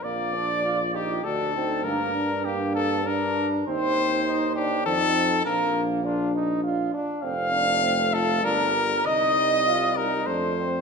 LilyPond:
<<
  \new Staff \with { instrumentName = "Flugelhorn" } { \time 3/4 \key bes \major \tempo 4 = 100 d''4. g'8 a'4 | bes'4 g'8 a'8 bes'4 | c''4. g'8 a'4 | bes'8 r8 f'8 r4. |
f''4. a'8 bes'4 | ees''4. bes'8 c''4 | }
  \new Staff \with { instrumentName = "Trumpet" } { \time 3/4 \key bes \major d''4. g'8 a'4 | bes'4 g'8 a'8 bes'4 | c''4. g'8 a'4 | bes'8 r8 f'8 r4. |
f''4. a'8 bes'4 | ees''4. bes'8 c''4 | }
  \new Staff \with { instrumentName = "French horn" } { \time 3/4 \key bes \major f'2 fis'8 ees'8 | d'4 d'4 d'4 | ees'2 ees'4 | d'4 d'4. r8 |
a2 g4 | g2 a4 | }
  \new Staff \with { instrumentName = "Trombone" } { \time 3/4 \key bes \major bes8 d'8 f'8 ees'8 d'8 c'8 | bes8 d'8 bes4 d'4 | c'4 ees'8 d'8 c'4 | bes4 d'8 ees'8 f'8 d'8 |
c'8 d'8 c'8 f'8 d'8 r8 | ees'4 f'8 ees'8 d'8 c'8 | }
  \new Staff \with { instrumentName = "Tuba" } { \clef bass \time 3/4 \key bes \major bes,,2 d,4 | g,2. | ees,2 f,4 | bes,,2~ bes,,8 r8 |
f,,2 g,,4 | c,2 f,4 | }
>>